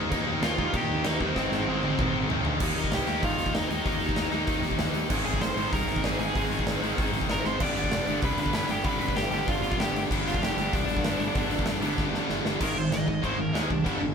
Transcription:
Already playing: D#3 G3 A#3 D#4
0.11 D#2 D#3 G3 A#3 D#4, kick, crash
0.26 D#2
0.42 D#2 D#3 G3 A#3 D#4 F4 F5, snare, crash
0.57 D#3 G3 A#3 D#4, kick
0.73 A#2 D#3 G3 A#3 D#4 G4 G5, kick, crash
0.90 D#2
1.04 D#2 D#3 G3 A#3 D#4 D#5, snare, crash
1.19 D#2 D#3 G3 A#3 C4 D#4 C5, kick
1.36 G#1 G#2 D#3 G#3 C4 D#4, kick, snare
1.51 G#1, snare
1.67 G#1 G#2 D#3 G#3 C4 D#4
1.83 G#2 D#3 G#3 C4 D#4, high tom
1.98 D#2 G#2 D#3 G#3 C4 D#4, kick, mid tom
2.12 G#1
2.28 G#1 G#2 D#3 G#3 C4 D#4, floor tom
2.43 D2 G#2 D#3 G#3 C4 D#4, floor tom
2.59 D#2 D#3 G3 A#3 D#4, kick, crash
2.75 D#2 D#4 D#5, open hi-hat
2.84 kick
2.90 C2 G4, snare, open hi-hat
2.94 G5
3.06 D#2 D#3 G3 A#3 D#4, open hi-hat
3.23 G#2 F4 F5, kick, open hi-hat
3.37 D#2, open hi-hat
3.46 kick
3.54 D#2 D#4 D#5, snare, open hi-hat
3.70 D#2 D#4 D#5, open hi-hat
3.84 D#2 D#3 G3 A#3 D#4, kick, open hi-hat
4.01 D#2, open hi-hat
4.09 kick
4.16 D#2, snare, open hi-hat
4.31 D#2 D#3 G3 A#3 D#4, open hi-hat
4.47 D#2, kick, open hi-hat
4.61 D#2, open hi-hat
4.71 kick
4.78 D#2, snare, open hi-hat
4.93 D#2, open hi-hat
5.10 G#1 G#2 D#3 G#3 C4 D#4, kick, crash
5.25 G#1 G#4 G#5, open hi-hat
5.34 kick
5.41 F1 C5 C6, snare, open hi-hat
5.55 G#1 G#2 D#3 G#3 C4 D#4, open hi-hat
5.72 C2 A#4 A#5, kick, open hi-hat
5.87 G#1, open hi-hat
5.96 kick
6.04 G#1 G#4 G#5, snare, open hi-hat
6.19 G#1 G#4 G#5, open hi-hat
6.34 G#1 G#2 D#3 G#3 C4 D#4, kick, open hi-hat
6.50 G#1, open hi-hat
6.59 kick
6.66 G#1, snare, open hi-hat
6.81 G#1 G#2 D#3 G#3 C4 D#4, open hi-hat
6.98 G#1, kick, open hi-hat
7.12 G#1, open hi-hat
7.21 kick
7.29 G#1 A#4 A#5, snare, open hi-hat
7.44 G#1 C5 C6, snare
7.59 G1 G2 D3 G3 B3 D4 D5 D6, kick, crash
7.76 G1 D5 D6, open hi-hat
7.84 kick
7.91 F1, snare, open hi-hat
8.07 G1 G2 D3 G3 B3 D4, open hi-hat
8.22 C2 B4 B5, kick, open hi-hat
8.38 G1 B4 B5, open hi-hat
8.46 kick
8.53 G1 B4 B5, snare, open hi-hat
8.69 G1 G4 G5, open hi-hat
8.83 G1 G2 D3 G3 B3 D4 B4 B5, kick, open hi-hat
9.00 G1 B4 B5, open hi-hat
9.08 kick
9.15 G1 G4 G5, snare, open hi-hat
9.30 G1 G2 D3 G3 B3 D4 G4 G5, open hi-hat
9.47 G1 F4 F5, kick, open hi-hat
9.61 G1, open hi-hat
9.72 kick
9.77 G1 G4 G5, snare, open hi-hat
9.93 G1, open hi-hat
10.09 G1 G2 D3 G3 B3 D4, kick, crash
10.25 G1 F4 F5, open hi-hat
10.34 kick
10.39 F1 G4, snare, open hi-hat
10.44 G5
10.56 G1 G2 D3 G3 B3 D4, open hi-hat
10.73 C2 D4 D5, kick, open hi-hat
10.88 G1, open hi-hat
10.97 kick
11.03 G1, snare, open hi-hat
11.17 G1, open hi-hat
11.33 G1 G2 D3 G3 B3 D4, kick, open hi-hat
11.50 G1, open hi-hat
11.59 kick
11.65 G1, snare, open hi-hat
11.80 G1 G2 D3 G3 B3 D4, open hi-hat
11.98 G1, kick, snare
12.11 G1, snare
12.29 G1, snare
12.44 G1, snare
12.60 G#1 G#2 D#3 G#3, kick, crash
12.64 A#4
12.76 G#1 G#2 D#3 C5
12.90 G#1 G#2 D#3 D#5, snare, crash
13.06 G#1 G#2 D#3, kick
13.22 G#1 G#2 D#3 G#3 C5, kick, crash
13.38 G#1 G#2 D#3 A#4
13.53 D#2 G#2 D#3 G#3 G#4, snare, crash
13.68 C2 G#2 D#3 D4, kick
13.84 G1 G2 D3 G3, kick, crash
14.01 G1 G2 D3

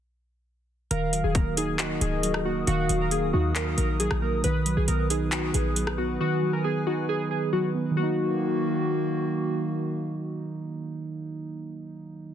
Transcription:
0.91 D#1 D#3 F#4 A#4 F5 D#6, closed hi-hat
1.13 F#3, closed hi-hat
1.24 D#1 G#4
1.35 A#3 A#4, kick, closed hi-hat
1.57 D#4 G#4, closed hi-hat
1.79 F#4 D#5, clap, closed hi-hat
2.01 C#1 G#4, closed hi-hat
2.23 F#3, closed hi-hat
2.34 cross-stick
2.45 A#3 F#4
2.67 D#1 D#3 F#4 F5, closed hi-hat
2.89 D#1 F#3, closed hi-hat
3.01 A#4
3.11 A#3 G#4, closed hi-hat
3.23 C#1
3.33 D#2 D#4 F#4
3.55 A#4, clap, closed hi-hat
3.77 A#1 A#4, closed hi-hat
4.00 F#3 G#4, closed hi-hat
4.11 A#1, cross-stick
4.22 A#3 A#4
4.44 B1 D#3 B4, closed hi-hat
4.66 F#3, closed hi-hat
4.77 B1 G#4
4.88 B1 B3 A#4, closed hi-hat
5.10 D#4 G#4, closed hi-hat
5.32 F#4, clap, closed hi-hat
5.54 A#1 G#4, closed hi-hat
5.76 F#3, closed hi-hat
5.87 cross-stick
5.98 B3 F#4
6.20 D#3 F#4 G#5
6.42 F#3
6.53 A#4
6.64 B3 G#4
6.87 D#4 F#4
7.09 G#4
7.31 G#4
7.53 F#3 F#4
7.75 B3
7.91 D#3 F#3
7.97 D#3 A#3 F#4
8.03 D#4

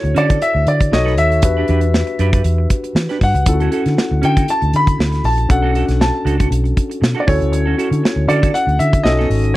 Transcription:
Already playing: E4 F#4 A4 C#5
0.03 D2, muted clean electric guitar stroke, closed hi-hat
0.15 D3 C#4 F#4 A4 D5, closed hi-hat
0.29 C#4 F#4 A4, kick, closed hi-hat
0.40 E5, muted clean electric guitar stroke, closed hi-hat
0.54 D2, muted clean electric guitar stroke
0.67 D3 D5, closed hi-hat
0.80 muted clean electric guitar stroke, kick, closed hi-hat
0.92 B1 D#4 F#4 A4 C#5 D#5, muted clean electric guitar stroke, snare
1.05 D#4 A4 B4, snare
1.17 D#2 E5, muted clean electric guitar stroke, closed hi-hat
1.30 muted clean electric guitar stroke, closed hi-hat
1.42 E2 D4 F#4 G4 B4, muted clean electric guitar stroke, kick, closed hi-hat
1.57 D4 G4 B4
1.68 E2 D4 G4 B4, closed hi-hat
1.81 muted clean electric guitar stroke, closed hi-hat
1.94 muted clean electric guitar stroke, snare
2.07 muted clean electric guitar stroke, closed hi-hat
2.19 F#2 D4 G4 B4, closed hi-hat
2.33 D4 G4 B4, kick, closed hi-hat
2.44 E2, muted clean electric guitar stroke, closed hi-hat
2.58 muted clean electric guitar stroke
2.70 kick, closed hi-hat
2.84 muted clean electric guitar stroke, closed hi-hat
2.95 E3, muted clean electric guitar stroke, snare
3.09 D4 G4 B4, snare, closed hi-hat
3.21 G2 F#5, muted clean electric guitar stroke, kick, open hi-hat
3.34 C#2, muted clean electric guitar stroke, closed hi-hat
3.46 D2 C#4 E4 F4 A4, muted clean electric guitar stroke, kick, closed hi-hat
3.54 F#4
3.60 C#4 F#4 A4, closed hi-hat
3.72 C#4 F#4 A4, closed hi-hat
3.86 D3, muted clean electric guitar stroke, snare, closed hi-hat
3.98 muted clean electric guitar stroke, snare
4.11 D2, muted clean electric guitar stroke
4.22 D3 C#4 F#4 A4 G5, closed hi-hat
4.36 C#4 F#4 A4, kick, closed hi-hat
4.48 A5, muted clean electric guitar stroke, closed hi-hat
4.62 D2, muted clean electric guitar stroke, closed hi-hat
4.73 D3 B5, closed hi-hat
4.87 muted clean electric guitar stroke, kick, closed hi-hat
4.98 D2, muted clean electric guitar stroke, snare
5.12 muted clean electric guitar stroke, snare, closed hi-hat
5.24 A#1 A5, open hi-hat
5.38 muted clean electric guitar stroke, closed hi-hat
5.49 B1 C#4 D4 F#4 A4 F#5, muted clean electric guitar stroke, kick, closed hi-hat
5.62 D4 F#4 A4
5.74 D4 F#4 A4, closed hi-hat
5.88 B1, muted clean electric guitar stroke, snare, closed hi-hat
6.00 A5, muted clean electric guitar stroke, snare
6.13 muted clean electric guitar stroke
6.25 C#2 D4 F#4 A4, closed hi-hat
6.38 D4 F#4 A4, kick, closed hi-hat
6.51 B1, muted clean electric guitar stroke, closed hi-hat
6.64 muted clean electric guitar stroke, closed hi-hat
6.77 kick, closed hi-hat
6.90 muted clean electric guitar stroke, closed hi-hat
7.01 B2, muted clean electric guitar stroke, snare
7.15 D4 F#4 A4
7.20 D5
7.27 D2 C#4 E4 F#4 A4 C#5, muted clean electric guitar stroke, kick, open hi-hat
7.41 C#2, muted clean electric guitar stroke, closed hi-hat
7.52 D2, muted clean electric guitar stroke, closed hi-hat
7.66 C#4 F#4 A4
7.77 C#4 F#4 A4, closed hi-hat
7.91 D3, muted clean electric guitar stroke, closed hi-hat
8.03 muted clean electric guitar stroke, snare
8.16 D2, muted clean electric guitar stroke
8.28 D3 C#4 F#4 A4 D5, closed hi-hat
8.42 C#4 F#4 A4, kick, closed hi-hat
8.54 F#5, muted clean electric guitar stroke, closed hi-hat
8.67 D2, muted clean electric guitar stroke, closed hi-hat
8.79 D3 E5, closed hi-hat
8.93 muted clean electric guitar stroke, kick, closed hi-hat
9.04 B1 C#4 D#4 F#4 A4 D#5, snare
9.19 B3 D#4 A4, snare
9.30 G#1, open hi-hat
9.44 muted clean electric guitar stroke, closed hi-hat

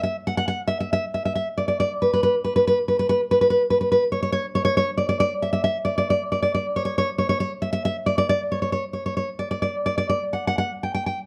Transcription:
0.03 E5
0.27 F#5
0.37 F#5
0.48 F#5
0.68 E5
0.80 E5
0.93 E5
1.14 E5
1.25 E5
1.35 E5
1.58 D5
1.68 D5
1.80 D5
2.02 B4
2.13 B4
2.23 B4
2.44 B4
2.56 B4
2.67 B4
2.88 B4
2.99 B4
3.09 B4
3.31 B4
3.41 B4
3.50 B4
3.70 B4
3.81 B4
3.92 B4
4.12 C#5
4.22 C#5
4.32 C#5
4.55 C#5
4.65 C#5
4.77 C#5
4.98 D5
5.09 D5
5.20 D5
5.42 E5
5.53 E5
5.64 E5
5.85 D5
5.98 D5
6.10 D5
6.32 D5
6.43 D5
6.55 D5
6.76 C#5
6.85 C#5
6.98 C#5
7.18 C#5
7.29 C#5
7.40 C#5
7.62 E5
7.73 E5
7.85 E5
8.06 D5
8.18 D5
8.29 D5
8.52 C#5
8.62 C#5
8.72 C#5
8.93 C#5
9.06 C#5
9.17 C#5
9.39 D5
9.51 D5
9.62 D5
9.86 D5
9.98 D5
10.09 D5
10.33 F#5
10.47 F#5
10.58 F#5
10.83 G5
10.94 G5
11.06 G5

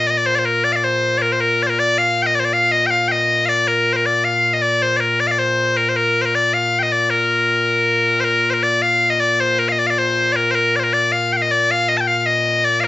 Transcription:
Already playing: A#2
0.07 D5 D#5
0.18 D5
0.26 C5
0.35 C5 D5
0.45 A#4
0.64 D5
0.73 D5 F5
0.84 C5
1.18 D5
1.22 A#4
1.32 C5
1.40 A#4
1.63 D5
1.67 A#4 C5
1.79 D5
1.98 F5
2.22 D#5 G5
2.35 D5
2.40 C5
2.45 D5
2.53 F5
2.72 D#5
2.86 G5
2.90 F5
3.08 D#5 G5
3.46 D5 F5
3.68 A#4
3.93 A#4 C5
4.06 D5
4.25 F5
4.54 D#5
4.62 D5
4.82 C5
4.97 A#4 D5
5.20 D5
5.27 D5 F5
5.39 C5
5.77 A#4
5.89 C5
5.96 A#4
6.21 A#4 C5
6.35 D5
6.54 F5
6.79 D#5 G5
6.92 D5
7.10 A#4
8.20 C5
8.24 A#4
8.50 A#4 C5
8.63 D5
8.82 F5
9.10 D#5
9.20 D5
9.40 C5
9.59 A#4
9.69 D#5 F5
9.79 D5
9.87 D5 F5
9.98 C5
10.32 A#4 D5
10.51 A#4 C5
10.76 C5 D5
10.84 A#4
10.93 D5
11.12 F5
11.33 G5
11.37 F5
11.42 D#5
11.51 D5
11.71 F5
11.89 D#5
11.97 G5 A5
12.07 F5
12.18 F5
12.26 D#5
12.65 D5
12.80 A#4 F5

